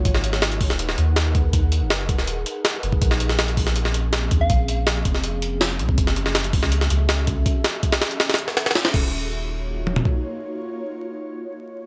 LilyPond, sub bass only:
\new Staff \with { instrumentName = "Sub bass" } { \clef bass \time 4/4 \key ees \minor \tempo 4 = 162 aes,,4.~ aes,,16 ees,,8. ees,4.~ | ees,8. ges,,4 ees,,8. r4 ges,,8 | bes,,2.~ bes,,8 ees,8 | bes,,4. f,,2 c,8 |
ges,,4.~ ges,,16 des,8. des,4. | r1 | ees,,2. r4 | r1 | }